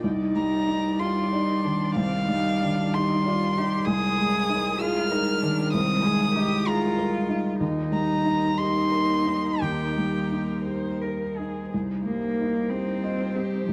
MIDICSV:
0, 0, Header, 1, 5, 480
1, 0, Start_track
1, 0, Key_signature, -3, "minor"
1, 0, Tempo, 644468
1, 18, Time_signature, 6, 3, 24, 8
1, 2418, Tempo, 621118
1, 5298, Tempo, 638298
1, 6258, Tempo, 666667
1, 6738, Tempo, 700117
1, 8658, Tempo, 647948
1, 10148, End_track
2, 0, Start_track
2, 0, Title_t, "Violin"
2, 0, Program_c, 0, 40
2, 269, Note_on_c, 0, 82, 111
2, 743, Note_on_c, 0, 84, 95
2, 754, Note_off_c, 0, 82, 0
2, 1451, Note_off_c, 0, 84, 0
2, 1456, Note_on_c, 0, 77, 126
2, 2195, Note_on_c, 0, 84, 108
2, 2207, Note_off_c, 0, 77, 0
2, 2889, Note_on_c, 0, 87, 127
2, 2901, Note_off_c, 0, 84, 0
2, 3619, Note_on_c, 0, 89, 127
2, 3630, Note_off_c, 0, 87, 0
2, 4337, Note_off_c, 0, 89, 0
2, 4342, Note_on_c, 0, 87, 127
2, 5067, Note_on_c, 0, 82, 115
2, 5079, Note_off_c, 0, 87, 0
2, 5302, Note_off_c, 0, 82, 0
2, 6019, Note_on_c, 0, 82, 110
2, 6497, Note_on_c, 0, 84, 116
2, 6508, Note_off_c, 0, 82, 0
2, 7222, Note_on_c, 0, 79, 85
2, 7232, Note_off_c, 0, 84, 0
2, 7941, Note_off_c, 0, 79, 0
2, 9397, Note_on_c, 0, 63, 54
2, 9628, Note_on_c, 0, 65, 55
2, 9639, Note_off_c, 0, 63, 0
2, 9879, Note_on_c, 0, 67, 73
2, 9890, Note_off_c, 0, 65, 0
2, 10148, Note_off_c, 0, 67, 0
2, 10148, End_track
3, 0, Start_track
3, 0, Title_t, "Cello"
3, 0, Program_c, 1, 42
3, 17, Note_on_c, 1, 63, 91
3, 735, Note_on_c, 1, 65, 88
3, 746, Note_off_c, 1, 63, 0
3, 973, Note_off_c, 1, 65, 0
3, 986, Note_on_c, 1, 63, 79
3, 1223, Note_on_c, 1, 62, 72
3, 1234, Note_off_c, 1, 63, 0
3, 1456, Note_on_c, 1, 60, 81
3, 1467, Note_off_c, 1, 62, 0
3, 1693, Note_off_c, 1, 60, 0
3, 1703, Note_on_c, 1, 63, 92
3, 1946, Note_on_c, 1, 62, 81
3, 1957, Note_off_c, 1, 63, 0
3, 2184, Note_on_c, 1, 63, 95
3, 2195, Note_off_c, 1, 62, 0
3, 2435, Note_on_c, 1, 65, 92
3, 2446, Note_off_c, 1, 63, 0
3, 2669, Note_on_c, 1, 67, 84
3, 2681, Note_off_c, 1, 65, 0
3, 2895, Note_on_c, 1, 68, 106
3, 2907, Note_off_c, 1, 67, 0
3, 3621, Note_on_c, 1, 65, 116
3, 3633, Note_off_c, 1, 68, 0
3, 3856, Note_on_c, 1, 63, 89
3, 3868, Note_off_c, 1, 65, 0
3, 4094, Note_on_c, 1, 62, 85
3, 4106, Note_off_c, 1, 63, 0
3, 4341, Note_off_c, 1, 62, 0
3, 4348, Note_on_c, 1, 60, 87
3, 4579, Note_on_c, 1, 68, 104
3, 4591, Note_off_c, 1, 60, 0
3, 4816, Note_off_c, 1, 68, 0
3, 4820, Note_on_c, 1, 67, 96
3, 5067, Note_on_c, 1, 65, 116
3, 5078, Note_off_c, 1, 67, 0
3, 5762, Note_off_c, 1, 65, 0
3, 5767, Note_on_c, 1, 63, 94
3, 6476, Note_off_c, 1, 63, 0
3, 6484, Note_on_c, 1, 63, 95
3, 7210, Note_on_c, 1, 67, 68
3, 7220, Note_off_c, 1, 63, 0
3, 7888, Note_off_c, 1, 67, 0
3, 7926, Note_on_c, 1, 72, 80
3, 8173, Note_on_c, 1, 70, 61
3, 8184, Note_off_c, 1, 72, 0
3, 8417, Note_on_c, 1, 68, 52
3, 8427, Note_off_c, 1, 70, 0
3, 8656, Note_off_c, 1, 68, 0
3, 8892, Note_on_c, 1, 58, 85
3, 9384, Note_on_c, 1, 60, 90
3, 9395, Note_off_c, 1, 58, 0
3, 10092, Note_off_c, 1, 60, 0
3, 10096, Note_on_c, 1, 53, 80
3, 10148, Note_off_c, 1, 53, 0
3, 10148, End_track
4, 0, Start_track
4, 0, Title_t, "Felt piano"
4, 0, Program_c, 2, 0
4, 0, Control_c, 2, 64, 127
4, 26, Note_on_c, 2, 36, 69
4, 30, Control_c, 2, 64, 0
4, 146, Control_c, 2, 64, 127
4, 264, Note_on_c, 2, 55, 53
4, 504, Note_on_c, 2, 63, 58
4, 645, Note_off_c, 2, 55, 0
4, 740, Note_on_c, 2, 67, 64
4, 883, Note_off_c, 2, 63, 0
4, 988, Note_on_c, 2, 74, 57
4, 1118, Note_off_c, 2, 67, 0
4, 1224, Note_on_c, 2, 51, 65
4, 1360, Note_off_c, 2, 74, 0
4, 1422, Note_off_c, 2, 36, 0
4, 1460, Control_c, 2, 64, 0
4, 1461, Note_on_c, 2, 36, 76
4, 1562, Control_c, 2, 64, 127
4, 1598, Note_off_c, 2, 51, 0
4, 1702, Note_on_c, 2, 55, 62
4, 1957, Note_on_c, 2, 51, 68
4, 2092, Note_off_c, 2, 55, 0
4, 2192, Note_on_c, 2, 67, 74
4, 2336, Note_off_c, 2, 51, 0
4, 2427, Note_on_c, 2, 74, 70
4, 2567, Note_off_c, 2, 67, 0
4, 2674, Note_on_c, 2, 63, 69
4, 2803, Note_off_c, 2, 74, 0
4, 2869, Note_off_c, 2, 36, 0
4, 2897, Note_on_c, 2, 36, 85
4, 2902, Note_off_c, 2, 63, 0
4, 2909, Control_c, 2, 64, 0
4, 3007, Control_c, 2, 64, 127
4, 3140, Note_on_c, 2, 56, 69
4, 3380, Note_on_c, 2, 63, 69
4, 3524, Note_off_c, 2, 56, 0
4, 3618, Note_on_c, 2, 68, 79
4, 3766, Note_off_c, 2, 63, 0
4, 3863, Note_on_c, 2, 70, 77
4, 4008, Note_off_c, 2, 68, 0
4, 4102, Note_on_c, 2, 51, 75
4, 4251, Note_off_c, 2, 70, 0
4, 4318, Note_off_c, 2, 36, 0
4, 4341, Note_on_c, 2, 36, 83
4, 4361, Control_c, 2, 64, 0
4, 4490, Note_off_c, 2, 51, 0
4, 4493, Control_c, 2, 64, 127
4, 4586, Note_on_c, 2, 56, 67
4, 4823, Note_on_c, 2, 63, 75
4, 4966, Note_off_c, 2, 56, 0
4, 5060, Note_on_c, 2, 68, 70
4, 5203, Note_off_c, 2, 63, 0
4, 5307, Note_on_c, 2, 70, 69
4, 5440, Note_off_c, 2, 68, 0
4, 5534, Note_on_c, 2, 63, 71
4, 5683, Note_off_c, 2, 70, 0
4, 5742, Note_off_c, 2, 36, 0
4, 5773, Note_on_c, 2, 39, 77
4, 5774, Note_off_c, 2, 63, 0
4, 5789, Control_c, 2, 64, 0
4, 5893, Control_c, 2, 64, 127
4, 6009, Note_on_c, 2, 55, 58
4, 6255, Note_on_c, 2, 63, 60
4, 6396, Note_off_c, 2, 55, 0
4, 6501, Note_on_c, 2, 67, 59
4, 6638, Note_off_c, 2, 63, 0
4, 6738, Note_on_c, 2, 70, 51
4, 6884, Note_off_c, 2, 67, 0
4, 6967, Note_on_c, 2, 63, 55
4, 7122, Note_off_c, 2, 70, 0
4, 7191, Note_off_c, 2, 39, 0
4, 7219, Note_on_c, 2, 39, 61
4, 7235, Control_c, 2, 64, 0
4, 7357, Control_c, 2, 64, 127
4, 7361, Note_off_c, 2, 63, 0
4, 7459, Note_on_c, 2, 55, 47
4, 7696, Note_on_c, 2, 63, 46
4, 7844, Note_off_c, 2, 55, 0
4, 7936, Note_on_c, 2, 67, 48
4, 8080, Note_off_c, 2, 63, 0
4, 8191, Note_on_c, 2, 70, 46
4, 8321, Note_off_c, 2, 67, 0
4, 8432, Note_on_c, 2, 63, 46
4, 8571, Note_off_c, 2, 70, 0
4, 8630, Note_off_c, 2, 39, 0
4, 8664, Note_off_c, 2, 63, 0
4, 8672, Control_c, 2, 64, 0
4, 8673, Note_on_c, 2, 36, 50
4, 8783, Control_c, 2, 64, 127
4, 8920, Note_on_c, 2, 55, 37
4, 9170, Note_on_c, 2, 63, 43
4, 9304, Note_off_c, 2, 55, 0
4, 9408, Note_on_c, 2, 67, 46
4, 9545, Note_off_c, 2, 63, 0
4, 9636, Note_on_c, 2, 75, 48
4, 9778, Note_off_c, 2, 67, 0
4, 9864, Note_on_c, 2, 67, 50
4, 10008, Note_off_c, 2, 75, 0
4, 10077, Note_off_c, 2, 36, 0
4, 10112, Control_c, 2, 64, 0
4, 10115, Note_on_c, 2, 36, 58
4, 10148, Note_off_c, 2, 36, 0
4, 10148, Note_off_c, 2, 67, 0
4, 10148, End_track
5, 0, Start_track
5, 0, Title_t, "String section"
5, 0, Program_c, 3, 48
5, 25, Note_on_c, 3, 74, 64
5, 27, Note_on_c, 3, 55, 71
5, 28, Note_on_c, 3, 51, 70
5, 2866, Note_off_c, 3, 74, 0
5, 2879, Note_off_c, 3, 51, 0
5, 2881, Note_on_c, 3, 56, 86
5, 2887, Note_on_c, 3, 70, 76
5, 2888, Note_on_c, 3, 51, 84
5, 2898, Note_off_c, 3, 55, 0
5, 5742, Note_off_c, 3, 51, 0
5, 5759, Note_off_c, 3, 70, 0
5, 5767, Note_on_c, 3, 58, 71
5, 5768, Note_on_c, 3, 70, 74
5, 5769, Note_off_c, 3, 56, 0
5, 5769, Note_on_c, 3, 63, 81
5, 8627, Note_off_c, 3, 63, 0
5, 8627, Note_off_c, 3, 70, 0
5, 8654, Note_off_c, 3, 58, 0
5, 8664, Note_on_c, 3, 72, 55
5, 8669, Note_on_c, 3, 55, 53
5, 8670, Note_on_c, 3, 63, 59
5, 10148, Note_off_c, 3, 55, 0
5, 10148, Note_off_c, 3, 63, 0
5, 10148, Note_off_c, 3, 72, 0
5, 10148, End_track
0, 0, End_of_file